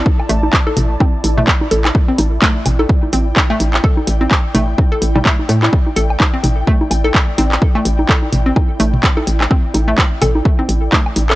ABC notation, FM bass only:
X:1
M:4/4
L:1/8
Q:"Swing 16ths" 1/4=127
K:Clyd
V:1 name="FM bass" clef=bass
z A,,, z A,,, z A,,, z A,,, | z A,,, z A,,, z A,,, z A,,, | z A,,, z A,,, z A,,, z A,, | z A,,, z A,,, z A,,, z A,,, |
z A,,, z A,,, z A,,, z A,,, | z A,,, z A,,, z A,,, z A,,, |]